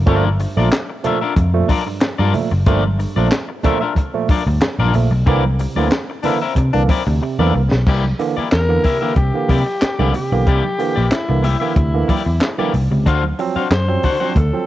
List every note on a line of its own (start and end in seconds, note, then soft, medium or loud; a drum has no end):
0.06 0.45 G1 loud
0.06 0.22 A#2 loud
0.06 0.22 F3 medium
0.06 0.23 A3 loud
0.06 0.27 D4 medium
0.06 0.28 F4 medium
0.06 0.28 A#4 medium
0.06 0.28 D5 medium
0.06 kick loud
0.06 closed hi-hat medium
0.06 muted conga soft
0.25 high conga medium
0.39 0.55 G2 medium
0.39 muted clean electric guitar stroke soft
0.39 open hi-hat medium
0.39 muted conga soft
0.56 0.69 A#1 medium
0.56 0.70 A#2 medium
0.56 0.70 F3 medium
0.56 0.70 A3 medium
0.56 0.69 D4 medium
0.56 0.69 F4 medium
0.56 0.68 A#4 medium
0.56 0.68 D5 medium
0.56 high conga medium
0.72 muted clean electric guitar stroke soft
0.72 snare loud
0.72 clap loud
0.72 closed hi-hat medium
0.90 muted clean electric guitar stroke soft
1.04 1.20 A#2 medium
1.04 1.20 F3 medium
1.04 1.20 A3 loud
1.04 1.17 D4 medium
1.04 1.17 F4 medium
1.04 1.17 A#4 medium
1.04 1.18 E5 medium
1.04 closed hi-hat medium
1.04 low conga medium
1.22 1.33 D4 medium
1.22 1.33 F4 medium
1.22 1.33 A#4 medium
1.22 1.32 E5 medium
1.36 1.62 F2 medium
1.36 muted clean electric guitar stroke soft
1.36 kick medium
1.36 closed hi-hat medium
1.36 low conga medium
1.54 1.68 A#2 medium
1.54 1.68 F3 medium
1.54 1.68 A3 medium
1.69 1.81 D4 medium
1.69 1.82 F4 medium
1.69 1.82 A#4 medium
1.69 1.83 D5 medium
1.69 kick medium
1.69 open hi-hat medium
1.69 muted conga soft
1.69 high conga medium
1.86 2.00 G2 medium
1.86 muted clean electric guitar stroke soft
2.01 2.08 F3 soft
2.01 2.08 A3 soft
2.01 muted clean electric guitar stroke soft
2.01 snare loud
2.01 clap medium
2.01 closed hi-hat medium
2.19 2.33 G2 medium
2.19 2.31 G2 loud
2.19 2.33 D4 medium
2.19 2.33 F4 medium
2.19 2.33 A#4 medium
2.19 2.33 D5 medium
2.19 high conga medium
2.33 2.49 A#2 medium
2.33 2.50 F3 medium
2.33 2.50 A3 medium
2.33 muted clean electric guitar stroke soft
2.33 open hi-hat medium
2.33 muted conga soft
2.33 low conga medium
2.51 2.63 F#1 medium
2.51 muted clean electric guitar stroke soft
2.66 3.05 G1 loud
2.66 2.82 A#2 medium
2.66 2.82 F3 medium
2.66 2.82 A3 loud
2.66 2.82 D4 medium
2.66 2.82 F4 medium
2.66 2.83 A#4 loud
2.66 2.83 D5 loud
2.66 kick loud
2.66 closed hi-hat medium
2.84 high conga medium
2.99 3.15 G2 medium
2.99 muted clean electric guitar stroke soft
2.99 open hi-hat medium
3.16 3.28 A#1 medium
3.16 3.30 A#2 medium
3.16 3.30 F3 medium
3.16 3.31 A3 medium
3.16 3.28 D4 medium
3.16 3.28 F4 medium
3.16 3.28 A#4 medium
3.16 3.27 D5 medium
3.16 high conga medium
3.31 muted clean electric guitar stroke soft
3.31 snare loud
3.31 clap loud
3.31 closed hi-hat medium
3.49 muted clean electric guitar stroke soft
3.63 3.80 A#2 medium
3.63 3.80 F3 medium
3.63 3.80 A3 loud
3.63 3.76 D4 medium
3.63 3.77 F4 medium
3.63 3.77 A#4 medium
3.63 3.77 E5 medium
3.63 kick medium
3.63 closed hi-hat medium
3.63 muted conga soft
3.63 low conga medium
3.81 3.93 D4 medium
3.81 3.93 F4 medium
3.81 3.92 A#4 medium
3.81 3.92 E5 medium
3.95 muted clean electric guitar stroke soft
3.95 kick medium
3.95 closed hi-hat medium
3.95 muted conga soft
3.95 low conga medium
4.14 4.28 A#2 medium
4.14 4.28 F3 medium
4.14 4.28 A3 medium
4.28 4.42 D4 medium
4.28 4.42 F4 medium
4.28 4.42 A#4 medium
4.28 4.43 D5 medium
4.28 muted picked electric bass stroke soft
4.28 kick loud
4.28 open hi-hat medium
4.28 muted conga soft
4.28 high conga medium
4.46 4.58 D2 medium
4.46 4.60 G2 medium
4.46 muted clean electric guitar stroke medium
4.61 4.69 F3 soft
4.61 4.69 A3 soft
4.61 muted clean electric guitar stroke soft
4.61 snare loud
4.61 clap medium
4.61 closed hi-hat medium
4.61 muted conga soft
4.79 4.90 A#1 medium
4.79 4.93 G2 medium
4.79 4.93 D4 medium
4.79 4.94 F4 medium
4.79 4.93 A#4 medium
4.79 4.93 D5 medium
4.79 high conga medium
4.94 5.07 A#1 loud
4.94 5.10 A#2 medium
4.94 5.10 F3 medium
4.94 5.10 A3 medium
4.94 muted clean electric guitar stroke soft
4.94 open hi-hat medium
4.94 muted conga soft
4.94 low conga medium
5.11 5.23 B1 medium
5.11 muted clean electric guitar stroke soft
5.26 5.65 C2 loud
5.26 5.42 D3 medium
5.26 5.43 E3 medium
5.26 5.43 A#3 loud
5.26 5.42 C4 medium
5.26 5.43 E4 medium
5.26 5.43 A#4 medium
5.26 5.43 D5 medium
5.26 kick loud
5.26 closed hi-hat medium
5.26 muted conga soft
5.43 high conga medium
5.59 5.75 C3 medium
5.59 muted clean electric guitar stroke soft
5.59 open hi-hat medium
5.59 muted conga soft
5.75 5.88 D2 medium
5.75 5.90 D3 medium
5.75 5.90 E3 medium
5.75 5.90 A#3 medium
5.75 5.88 C4 medium
5.75 5.88 E4 medium
5.75 5.88 A#4 medium
5.75 5.87 D5 medium
5.75 high conga soft
5.91 muted clean electric guitar stroke soft
5.91 snare loud
5.91 clap loud
5.91 closed hi-hat medium
6.10 muted clean electric guitar stroke soft
6.23 6.39 D3 medium
6.23 6.39 E3 medium
6.23 6.40 A#3 medium
6.23 6.37 C4 medium
6.23 6.34 D4 loud
6.23 6.37 E4 medium
6.23 6.37 A#4 medium
6.23 6.38 E5 medium
6.23 open hi-hat medium
6.23 muted conga soft
6.23 low conga medium
6.42 6.53 C4 soft
6.42 6.53 E4 soft
6.42 6.53 A#4 medium
6.42 6.52 E5 medium
6.55 6.70 C3 loud
6.55 muted clean electric guitar stroke soft
6.55 kick medium
6.55 closed hi-hat medium
6.55 muted conga soft
6.55 low conga medium
6.73 6.86 C2 medium
6.73 6.88 D3 medium
6.73 6.88 E3 medium
6.73 6.88 A#3 medium
6.73 6.83 D4 loud
6.89 7.01 C4 medium
6.89 7.02 E4 medium
6.89 7.02 A#4 medium
6.89 7.02 D5 medium
6.89 kick loud
6.89 open hi-hat medium
6.89 high conga medium
7.06 7.18 D2 loud
7.06 7.20 C3 medium
7.06 muted clean electric guitar stroke medium
7.22 7.37 C3 medium
7.22 muted clean electric guitar stroke soft
7.39 7.51 E2 loud
7.39 7.53 D3 medium
7.39 7.53 E3 medium
7.39 7.53 A#3 medium
7.39 7.52 C4 medium
7.39 7.53 E4 medium
7.39 7.53 A#4 medium
7.39 7.53 D5 medium
7.39 high conga medium
7.54 7.67 C2 medium
7.54 7.61 E3 soft
7.54 7.61 A#3 soft
7.54 muted clean electric guitar stroke soft
7.54 muted conga soft
7.54 low conga medium
7.71 7.84 B1 medium
7.71 muted clean electric guitar stroke soft
7.71 snare medium
7.86 8.12 C2 medium
7.86 8.02 C3 medium
7.86 8.03 A#3 medium
7.86 8.03 E4 medium
7.86 8.03 G4 medium
7.86 8.04 D5 loud
7.86 kick loud
7.86 crash medium
8.04 high conga medium
8.19 8.35 D3 medium
8.19 8.35 E3 medium
8.19 8.35 A#3 medium
8.19 muted clean electric guitar stroke soft
8.19 open hi-hat medium
8.19 muted conga soft
8.36 8.42 E3 soft
8.36 8.42 A#3 soft
8.36 8.48 A#3 soft
8.36 8.48 E4 medium
8.36 8.48 G4 medium
8.36 8.47 D5 medium
8.36 muted picked electric bass stroke soft
8.51 8.77 E2 medium
8.51 9.13 A#4 loud
8.51 muted clean electric guitar stroke medium
8.51 snare loud
8.51 clap loud
8.51 closed hi-hat medium
8.69 8.82 D3 medium
8.69 8.83 E3 medium
8.69 8.83 A#3 medium
8.69 muted clean electric guitar stroke medium
8.83 9.00 C3 soft
8.83 8.96 A#3 medium
8.83 8.97 E4 medium
8.83 8.97 G4 medium
8.83 8.97 E5 medium
8.83 kick medium
8.83 open hi-hat medium
8.83 muted conga soft
8.83 low conga medium
9.01 9.15 D3 medium
9.01 9.15 E3 medium
9.01 9.15 A#3 medium
9.01 9.13 A#3 soft
9.01 9.13 E4 medium
9.01 9.12 G4 medium
9.01 9.12 E5 medium
9.15 9.30 C2 medium
9.15 9.32 C3 medium
9.15 10.10 G4 loud
9.15 muted clean electric guitar stroke soft
9.15 kick medium
9.15 closed hi-hat medium
9.15 low conga medium
9.34 9.48 D3 medium
9.34 9.48 E3 medium
9.34 9.48 A#3 medium
9.49 9.62 C3 medium
9.49 9.56 E3 soft
9.49 9.61 A#3 medium
9.49 9.56 A#3 medium
9.49 9.62 E4 medium
9.49 9.62 G4 medium
9.49 9.62 D5 medium
9.49 kick medium
9.49 open hi-hat medium
9.49 muted conga soft
9.49 high conga medium
9.66 muted clean electric guitar stroke soft
9.81 muted clean electric guitar stroke soft
9.81 muted picked electric bass stroke soft
9.81 snare loud
9.81 clap medium
9.81 closed hi-hat medium
9.99 10.11 C2 loud
9.99 10.13 D3 medium
9.99 10.13 E3 medium
9.99 10.13 A#3 medium
9.99 10.14 E4 medium
9.99 10.13 G4 medium
9.99 10.13 D5 medium
9.99 high conga medium
10.14 10.30 C3 medium
10.14 11.15 G4 loud
10.14 muted clean electric guitar stroke soft
10.14 open hi-hat medium
10.14 muted conga soft
10.14 low conga medium
10.32 10.47 B1 medium
10.32 10.46 D3 medium
10.32 10.46 E3 medium
10.32 10.46 A#3 medium
10.32 muted clean electric guitar stroke medium
10.47 10.60 C2 loud
10.47 10.63 C3 medium
10.47 10.63 A#3 medium
10.47 10.63 E4 medium
10.47 10.63 G4 medium
10.47 10.64 D5 medium
10.47 kick loud
10.47 closed hi-hat medium
10.47 muted conga soft
10.64 high conga medium
10.79 10.95 D3 medium
10.79 10.95 E3 medium
10.79 10.95 A#3 medium
10.79 muted clean electric guitar stroke soft
10.79 open hi-hat medium
10.79 muted conga soft
10.96 11.09 A#1 medium
10.96 11.03 E3 soft
10.96 11.02 A#3 soft
10.96 11.08 A#3 medium
10.96 11.08 E4 soft
10.96 11.07 G4 medium
10.96 11.07 D5 medium
11.11 11.44 E4 medium
11.11 muted clean electric guitar stroke soft
11.11 muted picked electric bass stroke soft
11.11 snare loud
11.11 clap medium
11.11 closed hi-hat medium
11.29 11.54 C2 medium
11.29 11.43 D3 medium
11.29 11.43 E3 medium
11.29 11.43 A#3 medium
11.29 muted clean electric guitar stroke soft
11.43 11.60 C3 soft
11.43 11.56 A#3 medium
11.43 11.56 E4 medium
11.43 12.71 E4 medium
11.43 11.57 G4 medium
11.43 11.57 E5 medium
11.43 open hi-hat medium
11.43 muted conga soft
11.43 low conga medium
11.60 11.75 D3 medium
11.60 11.75 E3 medium
11.60 11.75 A#3 medium
11.60 11.73 A#3 medium
11.60 11.73 E4 medium
11.60 11.73 G4 medium
11.60 11.72 E5 medium
11.76 12.02 D2 loud
11.76 11.93 C3 medium
11.76 muted clean electric guitar stroke soft
11.76 kick loud
11.76 closed hi-hat medium
11.76 muted conga soft
11.76 low conga medium
11.94 12.08 D3 medium
11.94 12.08 E3 medium
11.94 12.07 A#3 medium
12.08 12.16 E3 soft
12.08 12.21 A#3 medium
12.08 12.16 A#3 soft
12.08 12.22 E4 medium
12.08 12.22 G4 medium
12.08 12.22 D5 medium
12.08 kick medium
12.08 open hi-hat medium
12.08 muted conga soft
12.08 high conga medium
12.26 12.38 E2 medium
12.26 muted clean electric guitar stroke soft
12.41 muted clean electric guitar stroke soft
12.41 snare loud
12.41 clap medium
12.41 closed hi-hat medium
12.41 muted conga soft
12.58 12.72 D3 medium
12.58 12.73 E3 medium
12.58 12.73 A#3 medium
12.58 12.73 E4 medium
12.58 12.73 G4 medium
12.58 12.73 D5 medium
12.58 high conga medium
12.74 12.87 C2 medium
12.74 muted clean electric guitar stroke soft
12.74 open hi-hat medium
12.74 muted conga soft
12.74 low conga medium
12.91 13.07 C#2 medium
12.91 13.05 C3 medium
12.91 muted clean electric guitar stroke soft
13.06 13.32 D2 loud
13.06 13.22 D3 medium
13.06 13.22 D4 medium
13.06 13.23 F#4 medium
13.06 13.23 C5 medium
13.06 13.23 F5 medium
13.06 kick loud
13.06 closed hi-hat medium
13.23 high conga medium
13.39 13.55 F3 medium
13.39 13.55 F#3 medium
13.39 13.55 C4 loud
13.39 muted clean electric guitar stroke soft
13.39 open hi-hat medium
13.56 13.62 F#3 soft
13.56 13.63 C4 soft
13.56 13.68 D4 soft
13.56 13.68 F#4 medium
13.56 13.67 C5 medium
13.56 13.67 F5 medium
13.56 muted picked electric bass stroke soft
13.71 13.96 F#2 medium
13.71 14.39 C5 medium
13.71 snare loud
13.71 clap medium
13.71 closed hi-hat medium
13.71 muted conga soft
13.88 14.03 F3 medium
13.88 14.03 F#3 medium
13.88 14.03 C4 medium
13.88 muted clean electric guitar stroke soft
14.03 14.20 D3 soft
14.03 14.16 D4 medium
14.03 14.17 F#4 medium
14.03 14.17 C5 medium
14.03 14.17 F#5 medium
14.03 kick medium
14.03 open hi-hat medium
14.03 muted conga soft
14.03 low conga medium
14.20 14.35 F3 medium
14.20 14.35 F#3 medium
14.20 14.35 C4 medium
14.20 14.33 D4 medium
14.20 14.32 F#4 medium
14.20 14.32 C5 medium
14.20 14.32 F#5 medium
14.35 14.50 D2 loud
14.35 14.52 D3 medium
14.35 14.66 A4 medium
14.35 muted clean electric guitar stroke soft
14.35 kick medium
14.35 closed hi-hat medium
14.35 muted conga soft
14.35 low conga medium
14.53 14.66 F3 medium
14.53 14.66 F#3 medium
14.53 14.66 C4 medium